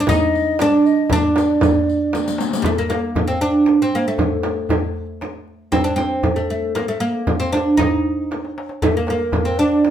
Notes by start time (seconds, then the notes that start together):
0.00 D4
0.07 D#4 D#5, riq, frame drum, darbuka dum
0.35 riq
0.59 D4 D5, riq, darbuka tek, frame drum
0.86 D#5, riq
1.06 D#5, frame drum
1.11 D4 D5, riq, darbuka dum
1.36 riq, darbuka tek, frame drum
1.61 riq, frame drum, darbuka dum
1.89 riq
2.13 riq, darbuka tek, frame drum
2.26 riq, darbuka ka
2.38 riq, darbuka tek
2.51 riq, darbuka ka
2.62 G3 A3, darbuka dum, frame drum
2.78 A#3
2.89 A#3, darbuka tek, frame drum
3.15 darbuka dum, frame drum
3.28 C4
3.41 D4
3.66 darbuka tek, frame drum
3.82 C4
3.92 A#3, darbuka ka
4.08 A3
4.18 darbuka dum, frame drum
4.43 darbuka tek, frame drum
4.69 darbuka dum, frame drum
5.21 darbuka tek, frame drum
5.48 darbuka ka
5.72 C4, frame drum, darbuka dum
5.84 D4
5.96 C4, darbuka tek, frame drum
6.23 darbuka dum, frame drum
6.36 A3
6.50 A3
6.75 A#3, darbuka tek, frame drum
6.88 A3
7.00 A#3
7.27 darbuka dum, frame drum
7.40 C4
7.52 D4, darbuka tek, frame drum
7.77 D#4, darbuka dum, frame drum
8.05 darbuka ka
8.31 darbuka tek, frame drum
8.45 darbuka ka
8.58 darbuka tek
8.69 darbuka ka
8.82 A3 A4, darbuka dum, frame drum
8.93 A#3 A#4
9.06 A#4, darbuka tek, frame drum
9.10 A#3
9.32 darbuka dum, frame drum
9.45 C4
9.58 D4 D5
9.84 darbuka tek, frame drum